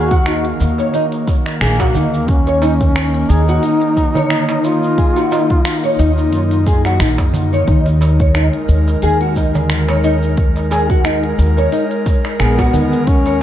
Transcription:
Already playing: D#2 D#3 A#3 F#4 F5
0.11 F#4, kick, closed hi-hat, shaker
0.26 D#4, finger snap, closed hi-hat, shaker
0.45 closed hi-hat
0.60 D#2, darbuka ka, shaker
0.78 C#5, darbuka tek, shaker
0.94 D#4, closed hi-hat, shaker
1.12 closed hi-hat, shaker
1.27 kick, darbuka tek, shaker
1.46 finger snap, darbuka ka, shaker
1.61 A#1 A#3 G#4, finger snap, closed hi-hat, shaker
1.80 F#4, kick, closed hi-hat, darbuka tek, shaker
1.95 D#2 D#4, darbuka dum, shaker
2.14 shaker
2.28 C#4 D#4, kick, closed hi-hat, shaker
2.47 C#5, closed hi-hat, darbuka ka, shaker
2.62 D#4, darbuka ka, darbuka tek, shaker
2.81 kick, closed hi-hat, shaker
2.96 finger snap, closed hi-hat, shaker
3.14 closed hi-hat
3.30 D#2 D#4 G#4, shaker
3.48 F#4, darbuka tek, shaker
3.63 D#4, closed hi-hat, shaker
3.82 closed hi-hat
3.97 kick, darbuka tek, shaker
4.15 C#5, darbuka ka, darbuka dum, shaker
4.30 D#4, finger snap, closed hi-hat, shaker
4.49 closed hi-hat, darbuka tek
4.64 F4, darbuka ka, shaker
4.83 shaker
4.98 G#4, kick, closed hi-hat, shaker
5.16 F#4, closed hi-hat, darbuka ka, shaker
5.31 D#4, darbuka ka, darbuka tek, shaker
5.50 kick, closed hi-hat, shaker
5.65 finger snap, closed hi-hat, shaker
5.84 C#5, closed hi-hat
5.99 D#2 D#4, darbuka ka, shaker
6.18 darbuka tek, shaker
6.33 F#2, closed hi-hat, shaker
6.51 closed hi-hat, shaker
6.66 G#4, kick, darbuka tek, shaker
6.85 F#4, finger snap, darbuka ka, shaker
7.00 A#1 D#4, finger snap, closed hi-hat, shaker
7.18 F#2, kick, closed hi-hat, darbuka tek, shaker
7.34 darbuka dum, shaker
7.53 C#5, shaker
7.68 D#2 G#3 D#4 A#4, kick, closed hi-hat, shaker
7.86 closed hi-hat, darbuka ka, shaker
8.01 darbuka ka, darbuka tek, shaker
8.20 C#5, kick, closed hi-hat, shaker
8.35 D#4, finger snap, closed hi-hat, shaker
8.53 closed hi-hat
8.69 D#2, shaker
8.88 darbuka tek, shaker
9.02 D#2 G#4, closed hi-hat, shaker
9.21 F#4, closed hi-hat
9.36 D#4, kick, darbuka tek, shaker
9.55 darbuka ka, darbuka dum, shaker
9.70 finger snap, closed hi-hat, shaker
9.88 C#5, closed hi-hat, darbuka tek
10.04 D#4, darbuka ka, shaker
10.23 shaker
10.37 kick, closed hi-hat, shaker
10.56 closed hi-hat, darbuka ka, shaker
10.71 G#4, darbuka ka, darbuka tek, shaker
10.90 F#4, kick, closed hi-hat, shaker
11.05 D#4, finger snap, closed hi-hat, shaker
11.24 closed hi-hat
11.39 D#2, darbuka ka, shaker
11.57 C#5, darbuka tek, shaker
11.72 D#4, closed hi-hat, shaker
11.91 closed hi-hat, shaker
12.06 kick, darbuka tek, shaker
12.25 finger snap, darbuka ka, shaker
12.39 A#1 B3 G#4, finger snap, closed hi-hat, shaker
12.58 F#4, kick, closed hi-hat, darbuka tek, shaker
12.73 D#2 D#4, darbuka dum, shaker
12.93 shaker
13.07 C#4 F5, kick, closed hi-hat, shaker
13.26 C#5, closed hi-hat, darbuka ka, shaker

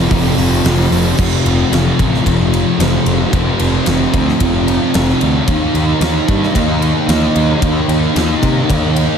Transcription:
Already playing: F3 C4
0.10 F1 F2 C3 F3, kick, open hi-hat
0.37 F1 C3 F3, open hi-hat
0.64 F1, snare, open hi-hat
0.80 snare
0.91 F1 C3 F3, open hi-hat
1.17 F1 F2 C3 F3, kick, crash
1.45 F1, ride
1.71 F1 F2 C3 F3, snare, ride
1.99 A1, kick, ride
2.15 snare
2.25 F1 F2 C3 F3, kick, ride
2.54 ride
2.78 F1 F2 C3 F3, snare, ride
3.05 F1, ride
3.33 F1 F2 C3 F3, kick, ride
3.60 F1, ride
3.86 F1 F2 C3 F3, snare, ride
4.13 D2, kick, ride
4.29 snare
4.39 F1 F2 C3 F3, kick, ride
4.68 ride
4.93 F1 F2 C3 F3, snare, ride
5.09 snare
5.21 D2, ride
5.47 D#2 D#3 A#3 D#4, kick, ride
5.74 D#2, ride
5.99 D#2 D#3 A#3 D#4, snare, ride
6.28 G2, kick, ride
6.43 snare
6.53 D#2 D#3 A#3 D#4, kick, ride
6.82 ride
7.07 D#2 D#3 A#3 D#4, snare, ride
7.35 D#2, ride
7.61 D#2 D#3 A#3 D#4, kick, ride
7.88 D#2, ride
8.14 D#2 D#3 A#3 D#4, snare, ride
8.42 C3, kick, ride
8.68 D#2 D#3 A#3 D#4, kick, ride
8.96 ride

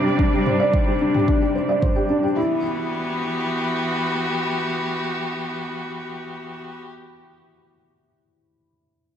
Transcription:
Already playing: C3 G3 D4 G4 C5 D5
0.06 G4
0.19 D4, kick
0.33 G4
0.46 C5, mid tom
0.60 D5
0.73 C5, kick
0.87 G4
1.01 D4
1.14 G4, mid tom
1.28 D4, kick
1.41 G4
1.55 C5
1.69 D5
1.82 C5, kick, mid tom
1.96 G4
2.10 D4
2.23 G4
2.36 E3 E4
2.47 B3
2.54 F#4
2.63 G4

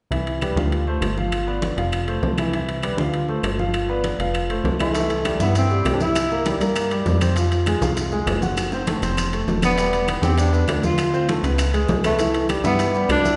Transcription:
0.11 C2 E3 E4 E5, high conga, high timbale
0.27 high conga, high timbale
0.41 G3 G4 B4, high conga, high timbale, low timbale, claves
0.56 D2 F3 F4 F5, high conga
0.72 high conga, high timbale
0.87 A3 A4 C5, high conga
1.01 G1, high conga, high timbale, low timbale, claves
1.17 F3 F4 F5, high conga
1.32 high conga, high timbale, claves
1.47 B3 B4 D5, high conga
1.62 high conga, high timbale, low timbale
1.77 F1 F3 F4 F5, high conga, high timbale
1.92 high conga, high timbale, claves
2.07 A3 A4 C5, high conga, high timbale
2.22 C2, high conga, low timbale
2.38 E3 E4 E5, high conga, high timbale, claves
2.53 E3 E4 E5, high conga, high timbale
2.68 high conga, high timbale
2.83 G3 G4 B4, high conga, high timbale, low timbale, claves
2.97 D2 F3 F4 F5, high conga
3.13 high conga, high timbale
3.28 A3 A4 C5, high conga
3.43 G1, high conga, high timbale, low timbale, claves
3.59 F3 F4 F5, high conga
3.74 high conga, high timbale, claves
3.89 B3 B4 D5, high conga
4.04 high conga, high timbale, low timbale
4.19 F1 F3 F4 F5, high conga, high timbale
4.34 high conga, high timbale, claves
4.50 A3 A4 C5, high conga, high timbale
4.64 C2, high conga, low timbale
4.80 E3 A3 E4 E5, high conga, high timbale, claves
4.95 E3 E4, high bongo, high conga, high timbale, maracas
5.10 high conga, high timbale, maracas
5.25 G3 G4, high bongo, high conga, high timbale, low timbale, claves, maracas
5.40 G2 B3 E4 E5, high bongo, high conga, maracas
5.55 C4, high bongo, high conga, high timbale, maracas
5.70 G3 G4, high bongo, high conga, maracas
5.85 C2, high bongo, low bongo, high conga, high timbale, low timbale, claves, maracas
5.95 D4
6.00 E4 E5, high bongo, high conga, maracas
6.15 high bongo, high conga, high timbale, claves, maracas
6.31 A#3 A#4, high conga, maracas
6.46 G3 G4, high bongo, high conga, high timbale, low timbale, maracas
6.60 G2 A#3 A#4, high bongo, high conga, high timbale, maracas
6.76 high bongo, high conga, high timbale, claves, maracas
6.91 G3 G4, high bongo, high conga, high timbale, maracas
7.06 F2, high bongo, low bongo, high conga, low timbale, maracas
7.21 C4 C5, high bongo, high conga, high timbale, claves, maracas
7.36 F3 F4, high bongo, high conga, high timbale, maracas
7.52 high conga, high timbale, maracas
7.66 G#3 G#4, high bongo, high conga, high timbale, low timbale, claves, maracas
7.81 C2 F4 F5, high bongo, high conga, maracas
7.97 high bongo, high conga, high timbale, maracas
8.12 G#3 G#4, high bongo, high conga, maracas
8.27 F#1, high bongo, low bongo, high conga, high timbale, low timbale, claves, maracas
8.42 F#4 F#5, high bongo, high conga, maracas
8.57 high bongo, high conga, high timbale, claves, maracas
8.72 C4 C5, high bongo, high conga, maracas
8.87 A3 A4, high bongo, high conga, high timbale, low timbale, maracas
9.02 F1 C4 C5, low bongo, high conga, high timbale, maracas
9.17 low bongo, high conga, high timbale, claves, maracas
9.33 A3 A4, high conga, high timbale, maracas
9.47 E1, high conga, low timbale, maracas
9.62 B3 D4 D5, low bongo, high conga, high timbale, claves, maracas
9.78 G3 G4, high bongo, high conga, high timbale, maracas
9.93 high conga, high timbale, maracas
10.08 B3 B4, high bongo, high conga, high timbale, low timbale, claves, maracas
10.22 E2 C4 G4 G5, high bongo, high conga, maracas
10.38 D4, high bongo, high conga, high timbale, maracas
10.53 B3 B4, high bongo, high conga, maracas
10.68 D2, high bongo, low bongo, high conga, high timbale, low timbale, claves, maracas
10.83 F4 F5, high bongo, high conga, maracas
10.98 high bongo, high conga, high timbale, claves, maracas
11.14 C4 C5, high conga, maracas
11.28 A3 A4, high bongo, high conga, high timbale, low timbale, maracas
11.43 C#2 B3 B4, high bongo, high conga, high timbale, maracas
11.58 high bongo, high conga, high timbale, claves, maracas
11.74 G#3 G#4, high bongo, high conga, high timbale, maracas
11.88 C2, high bongo, low bongo, high conga, low timbale, maracas
12.04 A3 B3 B4, high bongo, high conga, high timbale, claves, maracas
12.19 E3 E4, high bongo, high conga, high timbale, maracas
12.34 high conga, high timbale, maracas
12.49 G3 G4, high bongo, high conga, high timbale, low timbale, claves, maracas
12.64 G2 B3 E4 E5, high bongo, high conga, maracas
12.79 high bongo, high conga, high timbale, maracas
12.94 G3 G4, high bongo, high conga, maracas
13.09 C2 D4, high bongo, low bongo, high conga, high timbale, low timbale, claves, maracas
13.25 E4 E5, high bongo, high conga, maracas

